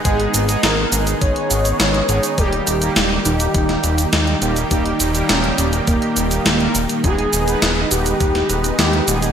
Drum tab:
HH |xxxxx-xxxxxxxxxx|xxxxx-xxxxxxxxxx|xxxxxxxxxxxxxxxx|xxxxx-xxxxxxxxxx|
SH |x-xxx-xxx-xxx-xx|x-xxx-xxx-xxx-xx|x-xxx-xxx-xxx-xx|x-xxx-xxx-xxx-xx|
SD |----o-------o---|----o----o--o---|----o-------o---|----o----o--o---|
BD |o-------o-------|o-------o-------|o-------o-------|o-------o-------|